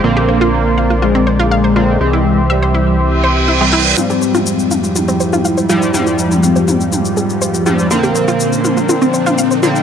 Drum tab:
SH |----------------|----------------|xxxxxxxxxxxxxxxx|xxxxxxxxxxxxxxxx|
T2 |----------------|----------------|o--o--o-o--o----|o--o--o-o-----o-|

SH |xxxxxxxxxxxxxxxx|
T2 |o-----o-o--o--o-|